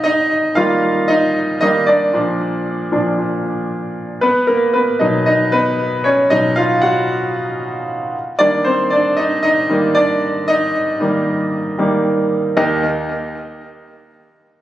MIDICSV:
0, 0, Header, 1, 2, 480
1, 0, Start_track
1, 0, Tempo, 521739
1, 46, Time_signature, 4, 2, 24, 8
1, 13448, End_track
2, 0, Start_track
2, 0, Title_t, "Grand piano"
2, 0, Program_c, 0, 0
2, 0, Control_c, 0, 64, 127
2, 0, Note_on_c, 0, 63, 79
2, 0, Note_on_c, 0, 75, 101
2, 33, Note_off_c, 0, 75, 0
2, 33, Note_on_c, 0, 75, 103
2, 52, Note_off_c, 0, 63, 0
2, 52, Note_on_c, 0, 63, 79
2, 486, Note_off_c, 0, 75, 0
2, 495, Note_off_c, 0, 63, 0
2, 509, Note_on_c, 0, 77, 87
2, 514, Note_on_c, 0, 51, 58
2, 522, Note_on_c, 0, 55, 53
2, 525, Note_on_c, 0, 65, 78
2, 528, Note_on_c, 0, 58, 60
2, 963, Note_off_c, 0, 77, 0
2, 972, Note_off_c, 0, 65, 0
2, 992, Note_on_c, 0, 75, 96
2, 1011, Note_on_c, 0, 63, 81
2, 1455, Note_off_c, 0, 63, 0
2, 1464, Note_off_c, 0, 75, 0
2, 1474, Note_off_c, 0, 51, 0
2, 1477, Note_off_c, 0, 55, 0
2, 1478, Note_off_c, 0, 58, 0
2, 1478, Note_on_c, 0, 75, 95
2, 1488, Note_on_c, 0, 51, 55
2, 1491, Note_on_c, 0, 55, 50
2, 1492, Note_on_c, 0, 58, 58
2, 1496, Note_on_c, 0, 63, 72
2, 1703, Note_off_c, 0, 51, 0
2, 1705, Note_off_c, 0, 55, 0
2, 1705, Note_off_c, 0, 58, 0
2, 1705, Note_off_c, 0, 75, 0
2, 1715, Note_off_c, 0, 63, 0
2, 1716, Note_on_c, 0, 74, 84
2, 1738, Note_on_c, 0, 62, 68
2, 1962, Note_on_c, 0, 46, 57
2, 1963, Note_off_c, 0, 62, 0
2, 1967, Note_on_c, 0, 53, 58
2, 1977, Note_on_c, 0, 62, 71
2, 1978, Control_c, 0, 64, 0
2, 2141, Control_c, 0, 64, 127
2, 2283, Note_off_c, 0, 46, 0
2, 2285, Note_off_c, 0, 53, 0
2, 2291, Note_off_c, 0, 62, 0
2, 2685, Note_on_c, 0, 46, 48
2, 2686, Note_on_c, 0, 53, 46
2, 2693, Note_on_c, 0, 62, 55
2, 2901, Note_off_c, 0, 46, 0
2, 2902, Note_off_c, 0, 53, 0
2, 2906, Note_off_c, 0, 62, 0
2, 3364, Note_off_c, 0, 74, 0
2, 3876, Note_on_c, 0, 71, 76
2, 3892, Note_on_c, 0, 59, 65
2, 3899, Control_c, 0, 64, 0
2, 4071, Control_c, 0, 64, 127
2, 4112, Note_off_c, 0, 59, 0
2, 4114, Note_on_c, 0, 70, 73
2, 4128, Note_off_c, 0, 71, 0
2, 4132, Note_on_c, 0, 58, 57
2, 4169, Note_off_c, 0, 70, 0
2, 4185, Note_off_c, 0, 58, 0
2, 4356, Note_on_c, 0, 71, 71
2, 4373, Note_on_c, 0, 59, 56
2, 4593, Note_off_c, 0, 59, 0
2, 4594, Note_on_c, 0, 75, 70
2, 4599, Note_on_c, 0, 47, 47
2, 4605, Note_on_c, 0, 54, 43
2, 4608, Note_off_c, 0, 71, 0
2, 4610, Note_on_c, 0, 63, 60
2, 4826, Note_off_c, 0, 75, 0
2, 4831, Note_off_c, 0, 63, 0
2, 4840, Note_on_c, 0, 75, 84
2, 4855, Note_on_c, 0, 63, 62
2, 5074, Note_off_c, 0, 63, 0
2, 5079, Note_on_c, 0, 71, 86
2, 5090, Note_off_c, 0, 75, 0
2, 5090, Note_on_c, 0, 59, 68
2, 5286, Note_off_c, 0, 47, 0
2, 5289, Note_off_c, 0, 54, 0
2, 5534, Note_off_c, 0, 59, 0
2, 5557, Note_on_c, 0, 73, 81
2, 5573, Note_on_c, 0, 61, 66
2, 5577, Note_off_c, 0, 71, 0
2, 5784, Note_off_c, 0, 73, 0
2, 5793, Note_off_c, 0, 61, 0
2, 5798, Note_on_c, 0, 75, 95
2, 5799, Note_on_c, 0, 47, 52
2, 5805, Note_on_c, 0, 54, 48
2, 5808, Note_on_c, 0, 63, 79
2, 6031, Note_off_c, 0, 63, 0
2, 6033, Note_on_c, 0, 77, 96
2, 6048, Note_on_c, 0, 65, 76
2, 6049, Note_off_c, 0, 75, 0
2, 6270, Note_off_c, 0, 65, 0
2, 6270, Note_on_c, 0, 78, 81
2, 6284, Note_on_c, 0, 66, 71
2, 6287, Note_off_c, 0, 77, 0
2, 6486, Note_off_c, 0, 47, 0
2, 6489, Note_off_c, 0, 54, 0
2, 7201, Note_off_c, 0, 78, 0
2, 7208, Note_off_c, 0, 66, 0
2, 7498, Control_c, 0, 64, 0
2, 7668, Control_c, 0, 64, 127
2, 7715, Note_on_c, 0, 74, 96
2, 7724, Note_on_c, 0, 51, 55
2, 7731, Note_on_c, 0, 55, 50
2, 7737, Note_on_c, 0, 58, 54
2, 7737, Note_on_c, 0, 62, 77
2, 7953, Note_on_c, 0, 72, 90
2, 7955, Note_off_c, 0, 62, 0
2, 7968, Note_off_c, 0, 74, 0
2, 7971, Note_on_c, 0, 60, 72
2, 8191, Note_on_c, 0, 74, 93
2, 8192, Note_off_c, 0, 60, 0
2, 8207, Note_off_c, 0, 72, 0
2, 8213, Note_on_c, 0, 62, 72
2, 8409, Note_off_c, 0, 51, 0
2, 8413, Note_off_c, 0, 55, 0
2, 8415, Note_off_c, 0, 58, 0
2, 8421, Note_off_c, 0, 74, 0
2, 8432, Note_on_c, 0, 75, 92
2, 8433, Note_off_c, 0, 62, 0
2, 8454, Note_on_c, 0, 63, 69
2, 8659, Note_off_c, 0, 75, 0
2, 8673, Note_off_c, 0, 63, 0
2, 8673, Note_on_c, 0, 75, 96
2, 8691, Note_on_c, 0, 63, 75
2, 8919, Note_on_c, 0, 51, 50
2, 8922, Note_on_c, 0, 55, 43
2, 8929, Note_on_c, 0, 58, 58
2, 9135, Note_off_c, 0, 63, 0
2, 9138, Note_off_c, 0, 51, 0
2, 9139, Note_off_c, 0, 55, 0
2, 9144, Note_off_c, 0, 58, 0
2, 9151, Note_on_c, 0, 74, 99
2, 9170, Note_on_c, 0, 62, 74
2, 9174, Note_off_c, 0, 75, 0
2, 9614, Note_off_c, 0, 62, 0
2, 9639, Note_on_c, 0, 75, 100
2, 9653, Note_off_c, 0, 74, 0
2, 9657, Note_on_c, 0, 63, 78
2, 10119, Note_on_c, 0, 51, 51
2, 10125, Note_on_c, 0, 55, 46
2, 10129, Note_on_c, 0, 58, 56
2, 10828, Note_off_c, 0, 51, 0
2, 10831, Note_off_c, 0, 55, 0
2, 10834, Note_off_c, 0, 58, 0
2, 10842, Note_on_c, 0, 51, 47
2, 10844, Note_on_c, 0, 55, 50
2, 10847, Note_on_c, 0, 58, 54
2, 11046, Note_off_c, 0, 75, 0
2, 11055, Note_off_c, 0, 63, 0
2, 11059, Note_off_c, 0, 51, 0
2, 11061, Note_off_c, 0, 55, 0
2, 11063, Note_off_c, 0, 58, 0
2, 11561, Note_on_c, 0, 75, 84
2, 11563, Note_on_c, 0, 39, 77
2, 11564, Note_on_c, 0, 63, 74
2, 11564, Note_on_c, 0, 70, 71
2, 11565, Note_on_c, 0, 67, 71
2, 11578, Control_c, 0, 64, 0
2, 11786, Note_off_c, 0, 75, 0
2, 11787, Note_off_c, 0, 39, 0
2, 11788, Note_off_c, 0, 63, 0
2, 11788, Note_off_c, 0, 67, 0
2, 11788, Note_off_c, 0, 70, 0
2, 13448, End_track
0, 0, End_of_file